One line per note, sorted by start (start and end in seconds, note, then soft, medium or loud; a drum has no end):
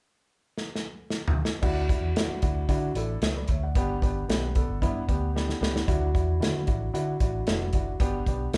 0.58 snare soft
0.75 snare medium
1.10 snare medium
1.28 floor tom medium
1.45 snare medium
1.62 1.95 D2 medium
1.62 1.83 D4 loud
1.62 1.83 E4 loud
1.62 1.84 F#4 loud
1.62 kick loud
1.62 crash medium
1.89 2.10 D4 medium
1.89 2.10 E4 medium
1.89 2.10 F#4 medium
1.89 kick medium
1.89 closed hi-hat medium
2.01 2.13 E2 medium
2.16 2.37 D4 medium
2.16 2.37 E4 medium
2.16 2.37 F#4 medium
2.16 snare loud
2.16 closed hi-hat medium
2.29 muted fingered electric bass stroke soft
2.42 2.65 D2 medium
2.42 2.63 D4 medium
2.42 2.63 E4 medium
2.42 2.63 F#4 medium
2.42 kick medium
2.42 closed hi-hat medium
2.69 2.91 D3 loud
2.69 2.89 D4 loud
2.69 2.90 E4 medium
2.69 2.90 F#4 loud
2.69 kick medium
2.69 closed hi-hat medium
2.94 3.17 A1 medium
2.94 3.16 D4 medium
2.94 3.16 E4 medium
2.94 3.17 A4 medium
2.94 closed hi-hat medium
3.22 3.44 C#2 medium
3.22 3.35 A4 medium
3.22 3.35 C#5 medium
3.22 snare loud
3.22 closed hi-hat medium
3.36 3.49 B4 medium
3.36 3.49 D5 medium
3.48 3.77 D2 medium
3.48 3.62 C#5 medium
3.48 3.62 E5 medium
3.48 kick medium
3.48 closed hi-hat medium
3.63 3.88 D5 medium
3.63 3.88 F#5 medium
3.75 3.97 G1 medium
3.75 3.96 B3 loud
3.75 3.96 D4 loud
3.75 3.96 G4 loud
3.75 kick loud
3.75 closed hi-hat medium
4.02 4.24 G1 medium
4.02 4.22 B3 medium
4.02 4.23 D4 medium
4.02 4.23 G4 medium
4.02 kick medium
4.02 closed hi-hat medium
4.28 4.61 B1 medium
4.28 4.49 B3 medium
4.28 4.49 D4 medium
4.28 4.50 G4 medium
4.28 snare loud
4.28 closed hi-hat medium
4.55 4.75 B3 medium
4.55 4.76 D4 medium
4.55 4.76 A4 medium
4.55 kick medium
4.55 closed hi-hat medium
4.68 4.83 G1 medium
4.82 5.04 G2 loud
4.82 5.02 B3 medium
4.82 5.02 D4 medium
4.82 5.02 E4 loud
4.82 kick medium
4.82 closed hi-hat medium
5.08 5.52 D2 medium
5.08 5.29 B3 medium
5.08 5.29 D4 medium
5.08 5.29 G4 medium
5.08 kick medium
5.08 closed hi-hat medium
5.35 5.56 B3 medium
5.35 5.56 D4 medium
5.35 5.56 G4 medium
5.35 snare medium
5.49 snare medium
5.61 5.83 C#2 medium
5.61 5.82 B3 medium
5.61 5.82 D4 medium
5.61 5.82 G4 medium
5.61 snare medium
5.76 snare medium
5.88 6.15 D2 loud
5.88 6.08 D4 loud
5.88 6.09 E4 loud
5.88 6.09 F#4 loud
5.88 kick loud
5.88 closed hi-hat medium
6.14 6.37 E2 medium
6.14 6.35 D4 medium
6.14 6.35 E4 medium
6.14 6.35 F#4 medium
6.14 kick medium
6.14 closed hi-hat medium
6.40 6.69 D3 medium
6.40 6.61 D4 medium
6.40 6.61 E4 medium
6.40 6.61 F#4 medium
6.40 snare loud
6.40 closed hi-hat medium
6.67 6.89 A1 medium
6.67 6.88 D4 medium
6.67 6.88 E4 medium
6.67 6.88 F#4 medium
6.67 kick medium
6.67 closed hi-hat medium
6.94 7.16 D3 medium
6.94 7.14 D4 medium
6.94 7.14 E4 medium
6.94 7.15 F#4 loud
6.94 closed hi-hat medium
7.20 7.42 A1 medium
7.20 7.41 D4 medium
7.20 7.42 E4 medium
7.20 7.42 F#4 medium
7.20 kick medium
7.20 closed hi-hat medium
7.47 7.69 F1 medium
7.47 7.68 D4 medium
7.47 7.68 E4 medium
7.47 7.68 F#4 medium
7.47 snare loud
7.47 closed hi-hat medium
7.73 7.95 F#1 medium
7.73 7.94 D4 medium
7.73 7.95 E4 medium
7.73 7.95 F#4 medium
7.73 kick medium
7.73 closed hi-hat medium
8.00 8.22 G1 medium
8.00 8.21 B3 loud
8.00 8.21 D4 loud
8.00 8.21 G4 loud
8.00 kick loud
8.00 closed hi-hat medium
8.26 8.48 B1 medium
8.26 8.48 B3 medium
8.26 8.48 D4 medium
8.26 8.48 G4 medium
8.26 kick medium
8.26 closed hi-hat medium
8.54 8.57 D2 medium
8.54 8.57 B3 medium
8.54 snare loud
8.54 closed hi-hat medium